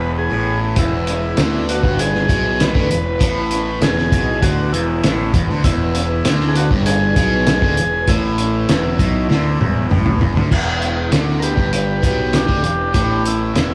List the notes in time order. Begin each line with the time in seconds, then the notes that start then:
Already playing: E1 E2 B3 E4 B4
0.18 G#4
0.30 A1 A2
0.76 E1 E2 E4, kick, closed hi-hat
1.07 closed hi-hat
1.37 D2 D3, snare, closed hi-hat
1.69 F#4, closed hi-hat
1.83 G1 G2, kick
1.99 G#4, closed hi-hat
2.15 snare
2.29 B1 B2, kick, closed hi-hat
2.60 B4, snare, closed hi-hat
2.74 D2 D3, kick
2.90 E1 E2 B4, closed hi-hat
3.20 A1 A2, kick, closed hi-hat
3.51 closed hi-hat
3.81 E1 E2 G#4, snare, closed hi-hat
3.98 snare
4.11 B1 B2, kick, closed hi-hat
4.42 D2 D3 F#4, kick, closed hi-hat
4.66 F#4
4.72 E1 E2 E4, closed hi-hat
5.04 A1 A2, snare, closed hi-hat
5.34 E1 E2, kick, closed hi-hat
5.48 D2 D3
5.64 E1 E2 E4, kick, closed hi-hat
5.95 closed hi-hat
6.25 D2 D3, snare, closed hi-hat
6.41 snare
6.48 G#4
6.56 F#4, closed hi-hat
6.71 G1 G2, kick
6.86 G#4, closed hi-hat
7.16 B1 B2, kick, closed hi-hat
7.47 snare, closed hi-hat
7.62 D2 D3, kick
7.77 E1 E2, closed hi-hat
8.08 A1 A2 E4, kick, closed hi-hat
8.38 closed hi-hat
8.68 E1 E2, snare, closed hi-hat
8.99 B1 B2, kick, closed hi-hat
9.29 D2 D3, snare
9.60 E1 E2, high tom
9.90 A1 A2, mid tom
10.06 mid tom
10.20 E1 E2, floor tom
10.35 D2 D3, floor tom
10.50 E1 E2 B3 E4 B4, kick, crash
10.82 closed hi-hat
11.11 D2 D3, snare, closed hi-hat
11.40 G4 A#4 B4, closed hi-hat
11.57 G1 G2, kick
11.73 G4 B4, closed hi-hat
12.02 B1 B2 G4, kick, closed hi-hat
12.06 B4
12.33 D4 G4, snare, closed hi-hat
12.48 D2 D3, kick
12.63 E1 E2 D4 G4, closed hi-hat
12.94 A1 A2 D4 G4, kick, closed hi-hat
13.26 E4, closed hi-hat
13.55 E1 E2, snare, closed hi-hat